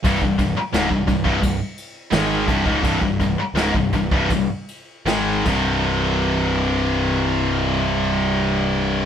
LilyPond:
<<
  \new Staff \with { instrumentName = "Distorted electric guitar" } { \clef bass \time 4/4 \key c \minor \tempo 4 = 80 <c, g,>16 <c, g,>16 <c, g,>16 r16 <des, aes,>16 <c, g,>16 <c, g,>16 <c, g,>16 <c, g,>16 r8. <aes, ees aes>8 <c, g,>16 <des, aes,>16 | <c, g,>16 <c, g,>16 <c, g,>16 r16 <des, aes,>16 <c, g,>16 <c, g,>16 <c, g,>16 <c, g,>16 r8. <aes, ees aes>8 <c, g, c>8~ | <c, g, c>1 | }
  \new Staff \with { instrumentName = "Distorted electric guitar" } { \clef bass \time 4/4 \key c \minor <c, g,>16 <c, g,>16 <c, g,>16 r16 <des, aes,>16 <c, g,>16 <c, g,>16 <c, g,>16 <c, g,>16 r8. <aes, ees aes>8 <c, g,>16 <des, aes,>16 | <c, g,>16 <c, g,>16 <c, g,>16 r16 <des, aes,>16 <c, g,>16 <c, g,>16 <c, g,>16 <c, g,>16 r8. <aes, ees aes>8 <c, g, c>8~ | <c, g, c>1 | }
  \new Staff \with { instrumentName = "Distorted electric guitar" } { \clef bass \time 4/4 \key c \minor <c, g,>16 <c, g,>16 <c, g,>16 r16 <des, aes,>16 <c, g,>16 <c, g,>16 <c, g,>16 <c, g,>16 r8. <aes, ees aes>8 <c, g,>16 <des, aes,>16 | <c, g,>16 <c, g,>16 <c, g,>16 r16 <des, aes,>16 <c, g,>16 <c, g,>16 <c, g,>16 <c, g,>16 r8. <aes, ees aes>8 <c, g, c>8~ | <c, g, c>1 | }
  \new Staff \with { instrumentName = "Picked electric bass" } { \clef bass \time 4/4 \key c \minor c,,16 c,,16 c,,16 r16 des,,16 c,,16 c,,16 c,,16 c,,16 r8. aes,,8 c,,16 des,,16 | c,,16 c,,16 c,,16 r16 des,,16 c,,16 c,,16 c,,16 c,,16 r8. aes,,8 c,,8~ | c,,1 | }
  \new DrumStaff \with { instrumentName = "Drums" } \drummode { \time 4/4 <bd cymr>16 bd16 <bd cymr>8 <cymr sn>16 bd16 <bd cymr>16 bd16 <bd cymr>8 cymr8 <cymr sn>8 <bd cymr>16 bd16 | <bd cymr>16 bd16 <bd cymr>8 <cymr sn>16 bd16 <bd cymr>16 bd16 <bd cymr>8 cymr8 <cymr sn>8 <cymc bd>8 | r4 r4 r4 r4 | }
>>